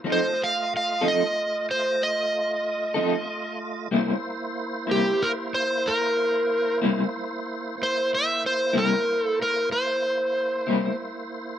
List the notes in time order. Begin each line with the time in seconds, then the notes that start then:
0.04 F3 A3 C4 D#4 F4 A4 D#5
0.12 C5
0.44 F5
0.77 F5
1.01 F3 C4 D#4 A4
1.08 D#5
1.71 C5
2.03 D#5
2.94 F3 C4 D#4 A4
3.91 C3 G3 A#3 E4 C5
4.87 C3 G3 A#3 E4
4.91 G4
5.22 A#4
5.54 C5
5.88 A#4
6.82 C3 G3 A#3 E4
7.77 A#3 E4 C5
7.83 C5
8.15 E5
8.46 C5
8.73 C3 G3 A#3 E4
8.78 A#4
9.24 A4
9.42 A#4
9.72 C5
10.67 C3 G3 A#3 E4